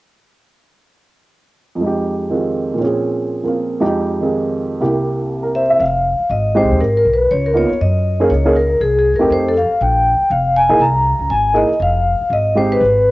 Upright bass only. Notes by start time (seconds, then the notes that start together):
5.79 F1
6.19 muted upright bass stroke
6.29 G#1
6.63 C2
6.71 D#2
6.80 G#1
7.05 B1
7.31 C#2
7.71 muted upright bass stroke
7.81 F#2
8.30 C#2
8.80 C2
9.14 F#2
9.22 D#2
9.30 F2
9.70 muted upright bass stroke
9.81 A#1
10.20 muted upright bass stroke
10.30 F1
10.70 A#1
10.79 C2
11.19 C#2
11.30 G#1
11.70 muted upright bass stroke
11.80 F1
12.21 muted upright bass stroke
12.30 G#1
12.81 G#1